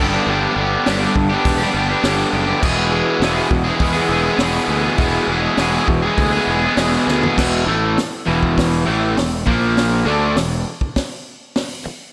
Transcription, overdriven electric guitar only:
0.00 0.26 G2 medium
0.00 0.27 D3 medium
0.00 0.16 G3 loud
0.00 0.15 B3 medium
0.00 0.13 D4 loud
0.00 0.11 G4 medium
0.12 0.30 B3 medium
0.12 0.30 D4 medium
0.12 0.32 G4 medium
0.17 0.28 G3 medium
0.27 0.84 G2 medium
0.27 0.85 D3 medium
0.27 0.54 G3 medium
0.27 0.58 B3 loud
0.27 0.58 D4 loud
0.33 0.60 G4 medium
0.56 0.86 G3 medium
0.56 0.88 B3 medium
0.56 0.88 D4 medium
0.61 0.89 G4 medium
0.85 1.30 G2 medium
0.85 1.31 D3 medium
0.85 1.04 G3 loud
0.85 1.03 B3 loud
0.90 1.01 D4 loud
0.90 0.99 G4 loud
1.00 1.15 B3 medium
1.00 1.15 D4 medium
1.00 1.15 G4 medium
1.05 1.14 G3 medium
1.16 muted overdriven electric guitar stroke soft
1.29 1.61 B3 medium
1.29 1.59 D4 medium
1.29 1.57 G4 medium
1.34 1.62 G3 medium
1.58 1.75 B3 medium
1.58 1.76 D4 medium
1.58 1.77 G4 medium
1.63 1.72 G3 medium
1.73 1.92 G3 medium
1.73 1.91 B3 medium
1.73 1.89 D4 medium
1.78 1.87 G4 loud
1.89 2.06 B3 medium
1.89 2.06 D4 medium
1.89 2.07 G4 medium
1.93 2.04 G3 medium
2.03 2.59 G2 loud
2.03 2.61 D3 loud
2.03 2.30 G3 loud
2.03 2.32 B3 loud
2.08 2.33 D4 loud
2.08 2.34 G4 loud
2.31 2.51 G3 medium
2.31 2.50 B3 medium
2.31 2.48 D4 medium
2.35 2.46 G4 medium
2.47 2.63 B3 medium
2.47 2.61 D4 medium
2.47 2.61 G4 medium
2.52 2.62 G3 medium
2.60 3.19 E2 loud
2.60 3.19 B2 loud
2.60 2.90 E3 loud
2.60 2.91 G#3 loud
2.64 2.93 B3 medium
2.64 2.95 G#4 loud
2.90 3.22 E3 medium
2.90 3.23 G#3 medium
2.90 3.24 B3 medium
2.95 3.24 G#4 medium
3.20 4.37 E2 medium
3.20 3.66 B2 loud
3.20 3.38 E3 loud
3.20 3.37 G#3 loud
3.24 3.35 B3 loud
3.24 3.33 G#4 loud
3.33 3.50 G#3 medium
3.33 3.50 B3 medium
3.33 3.50 G#4 medium
3.39 3.50 E3 medium
3.50 muted overdriven electric guitar stroke soft
3.64 3.96 G#3 medium
3.64 3.94 B3 medium
3.64 3.92 G#4 medium
3.69 3.97 E3 medium
3.93 4.10 G#3 medium
3.93 4.11 B3 medium
3.93 4.13 G#4 medium
3.98 4.08 E3 medium
4.08 4.27 E3 medium
4.08 4.25 G#3 medium
4.08 4.24 B3 medium
4.13 4.22 G#4 medium
4.23 4.41 G#3 medium
4.23 4.41 B3 medium
4.23 4.42 G#4 medium
4.27 4.39 E3 medium
4.37 4.96 E2 loud
4.37 4.96 B2 loud
4.37 4.67 E3 loud
4.37 4.69 G#3 loud
4.42 4.71 B3 loud
4.42 4.72 G#4 loud
4.67 4.86 E3 medium
4.67 4.86 G#3 medium
4.71 4.84 B3 medium
4.71 4.82 G#4 medium
4.83 4.99 G#3 medium
4.83 4.99 B3 medium
4.83 5.00 G#4 medium
4.87 4.97 E3 medium
4.96 5.56 E2 loud
4.96 5.57 B2 medium
4.96 5.26 E3 medium
4.96 5.28 G#3 medium
5.01 5.30 B3 loud
5.01 5.31 G#4 loud
5.27 5.58 E3 medium
5.27 5.59 G#3 medium
5.27 5.60 B3 medium
5.32 5.61 G#4 medium
5.57 6.03 E2 loud
5.57 6.03 B2 loud
5.57 5.75 E3 loud
5.57 5.74 G#3 loud
5.57 5.72 B3 loud
5.62 5.70 G#4 loud
5.71 5.87 G#3 medium
5.71 5.88 B3 medium
5.71 5.87 G#4 medium
5.77 5.87 E3 medium
5.88 muted overdriven electric guitar stroke soft
6.02 6.34 G#3 medium
6.02 6.33 B3 medium
6.02 6.31 G#4 medium
6.07 6.36 E3 medium
6.32 6.47 G#3 medium
6.32 6.48 B3 medium
6.32 6.50 G#4 medium
6.37 6.45 E3 medium
6.46 6.65 E3 medium
6.46 6.63 G#3 medium
6.46 6.61 B3 medium
6.51 6.60 G#4 medium
6.61 6.78 G#3 medium
6.61 6.78 B3 medium
6.61 6.79 G#4 medium
6.66 6.77 E3 medium
6.76 7.35 E2 loud
6.76 7.35 B2 loud
6.76 7.05 E3 loud
6.76 7.07 G#3 loud
6.76 7.08 B3 medium
6.81 7.10 G#4 loud
7.06 7.25 E3 medium
7.06 7.23 G#3 medium
7.06 7.22 B3 medium
7.11 7.20 G#4 medium
7.21 7.37 G#3 medium
7.21 7.36 B3 medium
7.21 7.35 G#4 medium
7.26 7.37 E3 medium
7.36 7.66 E2 loud
7.36 7.66 B2 loud
7.36 7.66 E3 loud
7.66 7.96 A2 medium
7.66 7.96 E3 loud
7.66 7.97 A3 loud
7.98 muted overdriven electric guitar stroke medium
8.26 8.86 E2 medium
8.26 8.85 B2 loud
8.26 8.85 E3 medium
8.86 9.15 A2 loud
8.86 9.16 E3 loud
8.86 9.17 A3 medium
9.17 9.41 E2 medium
9.17 9.41 B2 medium
9.46 10.05 A#2 medium
9.46 10.06 F3 loud
9.46 10.06 A#3 loud
10.05 10.35 D3 loud
10.05 10.35 A3 loud
10.05 10.36 D4 loud
10.36 10.60 E2 medium
10.36 10.60 B2 medium
11.86 muted overdriven electric guitar stroke medium

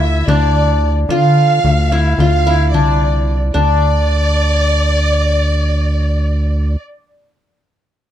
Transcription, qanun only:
0.00 1.16 E4 medium
0.00 0.18 G4 medium
0.28 1.78 D4 medium
1.10 1.98 F4 medium
1.92 2.26 E4 medium
2.20 2.53 F4 medium
2.47 3.86 E4 medium
2.74 3.54 D4 medium
3.54 7.46 D4 medium

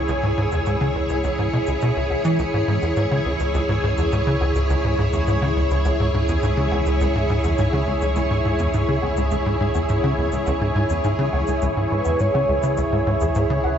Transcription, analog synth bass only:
0.09 0.15 C#2 medium
0.23 0.33 G#2 medium
0.38 0.48 G#2 medium
0.52 0.62 E2 medium
0.67 0.77 G#2 medium
0.81 0.91 C#3 medium
0.95 1.05 C#2 medium
1.10 1.23 C#2 medium
1.24 1.30 C#2 medium
1.39 1.49 G#2 medium
1.53 1.59 B2 medium
1.68 1.78 C#2 medium
1.82 1.92 B2 medium
1.96 2.10 C#2 medium
2.11 2.17 C#2 medium
2.25 2.38 E3 medium
2.39 2.45 C#2 medium
2.54 2.64 G#2 medium
2.68 2.78 G#2 medium
2.82 2.93 E2 medium
2.97 3.07 G#2 medium
3.11 3.22 C#3 medium
3.26 3.36 C#2 medium
3.40 3.54 C#2 medium
3.54 3.61 C#2 medium
3.69 3.79 G#2 medium
3.84 3.94 G#2 medium
3.98 4.08 E2 medium
4.13 4.23 G#2 medium
4.27 4.37 C#3 medium
4.41 4.51 C#2 medium
4.55 4.69 C#2 medium
4.70 4.76 C#2 medium
4.84 4.95 G#2 medium
4.99 5.09 G#2 medium
5.13 5.23 E2 medium
5.28 5.38 G#2 medium
5.42 5.52 C#3 medium
5.56 5.67 C#2 medium
5.71 5.85 C#2 medium
5.85 5.91 C#2 medium
6.00 6.10 G#2 medium
6.14 6.24 G#2 medium
6.29 6.39 E2 medium
6.43 6.53 G#2 medium
6.57 6.68 C#3 medium
6.72 6.82 C#2 medium
6.86 7.00 C#2 medium
7.01 7.07 C#2 loud
7.15 7.26 G#2 medium
7.30 7.40 G#2 medium
7.44 7.54 E2 medium
7.59 7.69 G#2 medium
7.73 7.83 C#3 medium
7.87 7.97 C#2 medium
8.02 8.15 C#2 medium
8.16 8.22 C#2 medium
8.30 8.41 G#2 medium
8.45 8.55 G#2 medium
8.60 8.70 E2 medium
8.74 8.84 G#2 medium
8.88 8.99 C#3 medium
9.03 9.13 C#2 medium
9.17 9.31 C#2 medium
9.32 9.38 C#2 loud
9.46 9.56 G#2 medium
9.60 9.71 G#2 medium
9.75 9.85 E2 medium
9.90 10.00 G#2 medium
10.04 10.14 C#3 medium
10.18 10.28 C#2 medium
10.33 10.46 C#2 medium
10.47 10.53 C#2 medium
10.61 10.72 G#2 medium
10.76 10.86 G#2 medium
10.90 11.00 E2 medium
11.04 11.15 G#2 medium
11.19 11.29 C#3 medium
11.33 11.44 C#2 medium
11.48 11.62 C#2 medium
11.62 11.68 C#2 medium
11.77 11.87 G#2 medium
11.92 12.02 G#2 medium
12.06 12.16 E2 medium
12.20 12.30 G#2 medium
12.35 12.45 C#3 medium
12.49 12.59 C#2 medium
12.63 12.77 C#3 medium
12.78 12.84 C#2 medium
12.92 13.02 G#2 medium
13.07 13.17 G#2 medium
13.21 13.31 E2 medium
13.36 13.46 G#2 medium
13.50 13.60 C#3 medium
13.64 13.75 C#2 medium

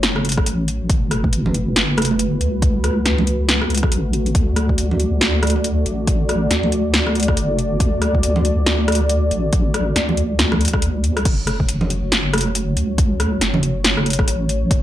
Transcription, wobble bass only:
0.00 0.45 F#1 loud
0.46 0.88 A1 medium
0.90 1.74 F#1 loud
1.76 2.39 F#1 medium
2.41 3.04 C#2 medium
3.05 3.90 C#2 medium
3.92 4.33 A1 loud
4.35 5.20 D2 medium
5.21 5.84 D2 medium
5.86 6.49 A1 medium
6.51 7.36 D2 medium
7.37 7.79 F#1 medium
7.80 8.65 D2 loud
8.66 9.30 D2 loud
9.31 9.95 A1 medium
9.96 11.24 D2 loud
11.25 12.10 F#1 medium
12.12 12.75 F#1 medium
12.76 13.40 C#2 medium
13.41 14.26 F#1 loud
14.28 14.69 A1 loud
14.71 14.83 F#1 loud

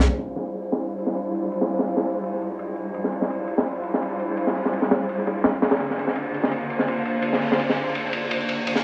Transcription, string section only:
0.09 2.93 G3 medium
0.09 2.93 D4 medium
0.09 2.93 E4 medium
0.09 2.93 F4 medium
0.09 2.93 C5 medium
2.94 5.78 G3 medium
2.94 5.78 D4 medium
2.94 5.78 E4 medium
2.94 5.78 F4 medium
2.94 5.78 C5 loud
5.80 8.64 D3 medium
5.80 8.64 A#3 medium
5.80 8.64 D4 medium
5.80 8.64 F4 medium
5.80 8.64 C5 loud
8.66 8.84 D3 medium
8.66 8.84 A#3 medium
8.66 8.84 D4 medium
8.66 8.84 F4 medium
8.66 8.84 C5 loud

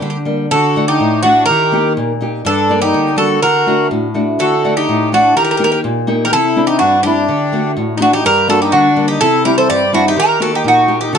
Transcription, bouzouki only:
0.02 0.09 G4 soft
0.10 0.17 G4 soft
0.51 0.85 A4 medium
0.88 1.22 G4 medium
1.23 1.45 F#4 medium
1.46 1.92 A#4 loud
2.46 2.80 A4 loud
2.82 3.15 G4 medium
3.18 3.40 A4 medium
3.42 3.87 A#4 loud
4.40 4.76 A4 medium
4.77 5.13 G4 medium
5.14 5.35 F#4 medium
5.37 5.43 A#4 medium
5.44 5.50 A#4 medium
5.51 5.56 A#4 medium
5.57 5.63 A#4 medium
5.64 5.71 A#4 medium
5.72 5.78 A#4 medium
6.25 6.32 A#4 medium
6.33 6.66 A4 loud
6.67 6.78 G4 medium
6.79 7.02 F#4 medium
7.03 7.72 G4 medium
7.98 8.01 G4 medium
8.02 8.13 F#4 medium
8.13 8.24 G4 medium
8.26 8.48 A#4 loud
8.50 8.60 A4 medium
8.62 8.72 G4 medium
8.72 9.06 F#4 medium
9.08 9.19 G4 medium
9.21 9.45 A4 loud
9.45 9.57 A#4 medium
9.58 9.68 C5 medium
9.70 9.91 D5 loud
9.94 10.05 F#4 medium
10.08 10.18 G4 medium
10.20 10.40 A#4 loud
10.42 10.53 A4 loud
10.55 10.66 G4 medium
10.68 11.00 F#4 medium
11.01 11.12 G4 medium
11.15 11.18 A4 loud

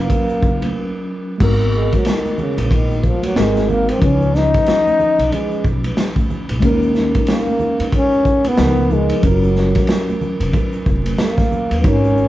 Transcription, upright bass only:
0.42 0.68 F#1 medium
1.40 1.92 G#1 loud
2.57 3.09 A#1 medium
3.36 3.88 G#1 loud
4.02 4.53 C#2 loud
5.19 5.29 B1 medium
5.64 5.90 B1 medium
6.49 6.62 A#1 medium
6.62 7.14 D#2 loud
7.79 8.31 F2 medium
8.58 9.10 C#2 loud
9.23 9.75 F#1 loud
10.40 10.51 F1 medium
10.86 11.12 F1 medium
11.71 11.81 D#2 medium
11.84 12.28 G#1 loud

